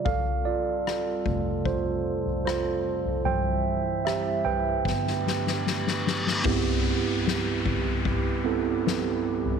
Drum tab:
CC |----------------|----------------|x---------------|
SD |----r-------r---|----r---oooooooo|----o-------o---|
FT |o-----o-o--o---o|o-----o---------|o-----o-o------o|
BD |o-----o-o-------|--------o-------|o-----o-o-------|